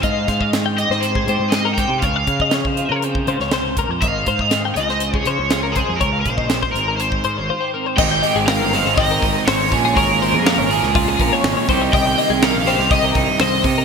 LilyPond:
<<
  \new Staff \with { instrumentName = "Overdriven electric guitar" } { \time 4/4 \key aes \major \tempo 4 = 121 f''4 r8 ees''8 c''4 ees''8 g''8 | f''2 r2 | f''4. ees''4 des''4 aes'8 | bes'8 c''4 bes'8 c''4. r8 |
g''4 f''4 ees''4 des''4 | bes'2 r2 | g''4 f''4 ees''4 ees''4 | }
  \new Staff \with { instrumentName = "Clean electric guitar" } { \time 4/4 \key aes \major ees''8 c''16 ees''8 g''16 ees''16 c''8 aes'16 c''8 aes'16 bes'16 c''8 | des''16 f''8 ees''16 des''16 c''8 bes'16 c''8 c''16 des''16 c''8 bes'16 c''16 | ees''8 c''16 ees''8 g''16 ees''16 c''8 aes'16 c''8 aes'16 bes'16 c''8 | des''16 f''8 ees''16 des''16 c''8 bes'16 c''8 c''16 des''16 c''8 bes'16 c''16 |
ees''16 g''16 ees''16 aes'16 bes'8 c''8 ees''16 bes'8 r16 c''8 r16 aes'16 | des''8 c''16 aes'16 f''16 des''16 bes'8 f'16 aes'16 bes'16 des''8 des''16 c''16 ees''16 | ees''16 g''16 ees''16 aes'16 bes'8 c''8 ees''16 bes'8 r16 c''8 r16 bes'16 | }
  \new Staff \with { instrumentName = "Clean electric guitar" } { \time 4/4 \key aes \major << { r4. g'8 c'8 g'8 c'16 ees'16 g'8 | r4. f'8 c'8 f'4. | r2. f'8 aes8~ | aes2. f'16 g'16 c'8 |
<aes ees' g'>8 g'8 aes8 ees'8 g'4 ees'8 <aes des' aes'>8 | aes'8 aes8 des'8 aes'4 des'8 aes8 <bes ees' g'>8 | g'8 bes8 ees'8 g'4 ees'8 bes8 <bes ees' g'>8 | } \\ { aes,4 ees4. aes,4. | des4 f4. aes,8 c8 bes,8 | aes,4 ees8 des4 f4. | des4 f8 aes,4 ees4. |
aes,4. ees4. aes,8 bes,8~ | bes,4 f4. f,4 c8~ | c4 ees4. g,4 c8 | } >> }
  \new Staff \with { instrumentName = "Overdriven electric guitar" } { \clef bass \time 4/4 \key aes \major r1 | r1 | r1 | r1 |
<aes, ees aes c' ees'>2 <aes, ees aes c' ees'>4. <bes, f bes des' f'>8~ | <bes, f bes des' f'>4. <bes, f bes des' f'>2 <c ees g c' g'>8~ | <c ees g c' g'>4. <c ees g c' g'>2 r8 | }
  \new Staff \with { instrumentName = "Picked electric bass" } { \clef bass \time 4/4 \key aes \major aes,8 aes,4~ aes,16 aes,8. aes,16 aes,4 c16 | des,8 des4~ des16 des8. des16 des,4 f,16 | aes,,8 aes,4 des,4 des16 des,4 f,16 | des,8 bes,,4 aes,,4 aes,16 aes,,16 r4 |
aes,,8 r16 aes,,8 g,,8 aes,,8. aes,,16 r16 aes,,8 bes,,8 | aes,,8. f,8 aes,,8 des,8. bes,,16 r16 aes,,16 r16 c,8 | c,8 r16 c,8 bes,,8 c,8. c,16 r16 c,8 c8 | }
  \new DrumStaff \with { instrumentName = "Drums" } \drummode { \time 4/4 <hh bd>8 <hh bd sn>16 bd16 <hh sn>8 hh16 sn16 hh16 bd16 hh8 <hh sn>8 <hh bd sn>8 | <hh bd>8 <hh bd>16 bd16 <hh sn>16 bd16 hh8 hh16 bd16 hh16 sn16 <hh sn>8 <hh bd>8 | <hh bd>8 <hh bd>16 bd16 <hh sn>8 hh16 sn16 hh16 bd16 hh8 <hh sn>8 <hh bd>8 | <hh bd>8 <hh bd>16 bd16 <hh sn>16 <bd sn>16 hh8 hh16 bd16 hh8 r4 |
<cymc bd>8 hho8 <hho sn>8 <hho sn>16 sn16 <hho bd>8 <hho bd>8 <hho sn>8 <hho bd>8 | <hho bd>8 hho8 <hho sn>8 hho16 sn16 <hho bd>8 <hho bd>8 <hho sn>8 <hho bd>8 | <hho bd>8 hho8 <hho sn>8 <hho sn>16 sn16 <hho bd>8 <hho bd>8 <hho sn>8 <hho bd>8 | }
>>